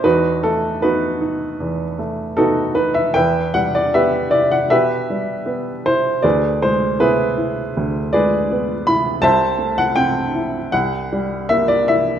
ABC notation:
X:1
M:4/4
L:1/16
Q:1/4=78
K:Em
V:1 name="Upright piano"
[^DFB]2 A2 [DFB]6 z2 [DFA]2 B e | [Beg]2 f d [GBe]2 d f [GBe]6 c2 | [^GBd]2 c2 [EGB]6 [GBd]4 b2 | [cea]3 f g4 f4 e d e2 |]
V:2 name="Upright piano"
E,,2 A,2 B,2 ^D2 E,,2 A,2 B,2 D2 | E,,2 G,2 B,2 E2 B,,2 G,2 B,2 E2 | D,,2 ^G,2 B,2 E2 D,,2 G,2 B,2 E2 | C,,2 A,2 C2 E2 C,,2 G,2 _B,2 E2 |]